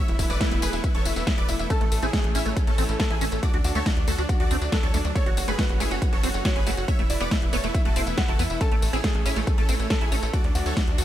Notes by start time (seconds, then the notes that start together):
Already playing: E3 A3 B3
0.08 E1 E4 E5, closed hi-hat
0.19 E1 E4 E5, kick, open hi-hat, tambourine
0.30 E1 B4 D5 D6, closed hi-hat, tambourine
0.41 E4 E5, kick, snare, closed hi-hat, tambourine
0.51 E1 E4 E5, closed hi-hat
0.62 E1 G#4 B4 B5, open hi-hat, tambourine
0.73 E1 E4 E5, closed hi-hat, tambourine
0.84 E4 E5, kick, closed hi-hat, tambourine
0.95 E1 A4 C#5 C#6, closed hi-hat
1.05 E1 E4 E5, open hi-hat, tambourine
1.16 E1 E4 E5, snare, closed hi-hat, tambourine
1.27 E4 E5, kick, snare, closed hi-hat, tambourine
1.38 E1 B4 D5 D6, closed hi-hat
1.49 E1 E4 E5, open hi-hat, tambourine
1.59 E1 E4 E5, closed hi-hat, tambourine
1.70 E3 A3 C#4 A4 A5, kick, closed hi-hat, tambourine
1.81 A1 A3 A4, closed hi-hat
1.92 A1 A3 A4, open hi-hat, tambourine
2.02 A1 C4 E4 G#4 G#5, closed hi-hat, tambourine
2.13 A3 G#4 A4, kick, snare, closed hi-hat, tambourine
2.24 A1 A3 A4, closed hi-hat
2.35 A1 C#4 E4 E5, open hi-hat, tambourine
2.46 A1 A3 A4, closed hi-hat, tambourine
2.56 A3 A4, kick, closed hi-hat, tambourine
2.67 A1 A3 C#4 A4 A5, closed hi-hat
2.78 A1 A3 C4 A4, open hi-hat, tambourine
2.89 A1 A3 A4, closed hi-hat, tambourine
3.00 A3 A4, kick, snare, closed hi-hat, tambourine
3.10 A1 E4 G#4 G#5, closed hi-hat
3.21 A1 A3 C#4 A4, open hi-hat, tambourine
3.32 A1 A3 A4, closed hi-hat, tambourine
3.43 F#3 D4 F#4 D5 D6, kick, closed hi-hat, tambourine
3.54 D2 D4 F#4 D5, closed hi-hat
3.64 D2 D4 F#4 D5, open hi-hat, tambourine
3.75 D2 A3 A4 C#5 C#6, closed hi-hat, tambourine
3.86 D4 F#4 D5, kick, snare, closed hi-hat, tambourine
3.97 D2 D4 D5, closed hi-hat
4.08 D2 A3 F#4 A4 A5, open hi-hat, tambourine
4.18 D2 D4 F#4 D5, closed hi-hat, tambourine
4.29 D4 F#4 D5, kick, closed hi-hat, tambourine
4.40 D2 F#4 D5 D6, closed hi-hat
4.51 D2 C4 D4 D5, open hi-hat, tambourine
4.62 D2 D4 D5, closed hi-hat, tambourine
4.72 D4 F#4 A4 D5, kick, snare, closed hi-hat, tambourine
4.83 D2 D4 A4 C#5 C#6, closed hi-hat
4.94 D2 A3 D4 D5, open hi-hat, tambourine
5.05 D2 D4 D5, closed hi-hat, tambourine
5.15 F#3 A3 C#4 A4 C#5 C#6, kick, closed hi-hat, tambourine
5.26 F#1 F#4 F#5, closed hi-hat
5.37 F#1 F#4 F#5, open hi-hat, tambourine
5.48 F#1 A3 G#4 B4 B5, closed hi-hat, tambourine
5.59 F#4 B4 F#5, kick, snare, closed hi-hat, tambourine
5.69 F#1 F#4 F#5, closed hi-hat
5.80 F#1 A3 E4 G#4 G#5, open hi-hat, tambourine
5.91 F#1 F#4 F#5, closed hi-hat, tambourine
6.02 F#4 F#5, kick, closed hi-hat, tambourine
6.13 F#1 F#4 A4 C#5 C#6, closed hi-hat
6.23 F#1 C4 F#4 F#5, open hi-hat, tambourine
6.34 F#1 F#4 F#5, closed hi-hat, tambourine
6.45 F#4 C#5 F#5, kick, snare, closed hi-hat, tambourine
6.56 F#1 C#4 G#4 B4 B5, closed hi-hat
6.66 F#1 A3 F#4 F#5, open hi-hat, tambourine
6.77 F#1 F#4 F#5, closed hi-hat, tambourine
6.88 E3 A3 B3 C#5 E5 E6, kick, closed hi-hat, tambourine
6.99 E1 A3 E4 E5, closed hi-hat
7.10 E1 E4 D5 E5, open hi-hat, tambourine
7.20 E1 B3 B4 D5 D6, closed hi-hat, tambourine
7.31 A3 E4 E5, kick, snare, closed hi-hat, tambourine
7.42 E1 E4 E5, closed hi-hat
7.53 E1 B3 A4 C#5 C#6, open hi-hat, tambourine
7.64 E1 A3 E4 E5, closed hi-hat, tambourine
7.74 E4 E5, kick, closed hi-hat, tambourine
7.85 E1 A3 F#4 A4 A5, closed hi-hat
7.96 E1 C4 E4 E5, open hi-hat, tambourine
8.07 E1 E4 E5, closed hi-hat, tambourine
8.18 A3 E4 E5 F#5, kick, snare, closed hi-hat, tambourine
8.28 F#1 E4 F#4 A4 A5, closed hi-hat
8.39 E2 B3 E4 E5, open hi-hat, tambourine
8.50 E1 E4 E5, closed hi-hat, tambourine
8.61 A3 C#4 A4 A5, kick, closed hi-hat, tambourine
8.72 A1 A3 A4, closed hi-hat
8.82 A1 A3 A4, open hi-hat, tambourine
8.93 A1 C4 E4 G#4 G#5, closed hi-hat, tambourine
9.04 A3 G#4 A4, kick, snare, closed hi-hat, tambourine
9.15 A1 A3 A4, closed hi-hat
9.26 A1 C#4 E4 E5, open hi-hat, tambourine
9.36 A1 A3 A4, closed hi-hat, tambourine
9.47 A3 A4, kick, closed hi-hat, tambourine
9.58 A1 A3 C#4 A4 A5, closed hi-hat
9.69 A1 A3 C4 A4, open hi-hat, tambourine
9.79 A1 A3 A4, closed hi-hat, tambourine
9.90 A3 A4, kick, snare, closed hi-hat, tambourine
10.01 A1 E4 G#4 G#5, closed hi-hat
10.12 A1 A3 C#4 A4, open hi-hat, tambourine
10.23 A1 A3 A4, closed hi-hat, tambourine
10.33 F#3 D4 F#4 D5, kick, closed hi-hat, tambourine
10.44 D2 D4, closed hi-hat
10.55 D2 D4 F#4, open hi-hat, tambourine
10.66 D2 A4 C#5, closed hi-hat, tambourine
10.77 D4, kick, snare, closed hi-hat, tambourine
10.87 D2 D4, closed hi-hat
10.98 D2 F#4 A4, open hi-hat, tambourine